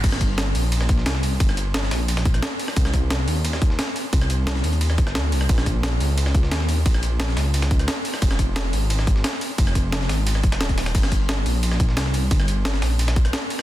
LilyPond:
<<
  \new Staff \with { instrumentName = "Detuned saw bass" } { \clef bass \time 4/4 \key g \phrygian \tempo 4 = 176 g,,4. bes,,4. c,4 | g,,4. bes,,4. r4 | c,4. ees,4. r4 | c,4. ees,4 g,,8 d,8 c,8 |
bes,,4. des,4. ees,4 | bes,,4. des,4. r4 | f,,4. aes,,4. r4 | f,,4. aes,,4 f,,8 ees,,4 |
g,,4. bes,,4. c,4 | g,,4. bes,,4. r4 | }
  \new DrumStaff \with { instrumentName = "Drums" } \drummode { \time 4/4 <cymc hh bd cymr>16 <ss sn>16 <hh bd>8 <hh cymr sn>8 <hh hho>8 <hh cymr>16 <ss sn>16 <hh bd>16 sn16 <hh cymr sn>16 sn16 <hh hho>8 | <hh bd cymr>16 ss16 hh8 <hh cymr sn>16 sn16 <hh hho sn>8 <hh cymr>16 <hh ss sn>16 <hh bd>16 <hh ss>16 <hh cymr sn>8 <hh hho>16 <ss sn>16 | <hh bd cymr>16 <ss sn>16 <hh bd>8 <hh cymr sn>8 <hh hho>8 <hh cymr>16 <ss sn>16 <hh bd>16 sn16 <hh cymr sn>16 sn16 <hh hho>8 | <hh bd cymr>16 ss16 hh8 <hh cymr sn>16 sn16 <hh hho>16 hh16 <hh cymr>16 ss16 <hh bd>16 <ss sn>16 <hh cymr sn>8 <hh hho>16 ss16 |
<hh bd cymr>16 <ss sn>16 <hh bd>8 <hh cymr sn>8 <hh hho>8 <hh cymr>16 <ss sn>16 <hh bd>16 sn16 <hh cymr sn>16 sn16 <hh hho>8 | <hh bd cymr>16 ss16 hh8 <hh cymr sn>16 sn16 <hh hho sn>8 <hh cymr>16 <hh ss sn>16 <hh bd>16 <hh ss>16 <hh cymr sn>8 <hh hho>16 <ss sn>16 | <hh bd cymr>16 <ss sn>16 <hh bd>8 <hh cymr sn>8 <hh hho>8 <hh cymr>16 <ss sn>16 <hh bd>16 sn16 <hh cymr sn>16 sn16 <hh hho>8 | <hh bd cymr>16 ss16 <hh bd>8 <hh cymr sn>16 sn16 <hh hho sn>8 <hh cymr>16 ss16 <hh bd>16 <hh ss sn>16 <hh cymr sn>16 <hh bd>16 <hh hho sn>16 <hh ss sn>16 |
<cymc hh bd cymr>16 <ss sn>16 <hh bd>8 <hh cymr sn>8 <hh hho>8 <hh cymr>16 <ss sn>16 <hh bd>16 sn16 <hh cymr sn>16 sn16 <hh hho>8 | <hh bd cymr>16 ss16 hh8 <hh cymr sn>16 sn16 <hh hho sn>8 <hh cymr>16 <hh ss sn>16 <hh bd>16 <hh ss>16 <hh cymr sn>8 <hh hho>8 | }
>>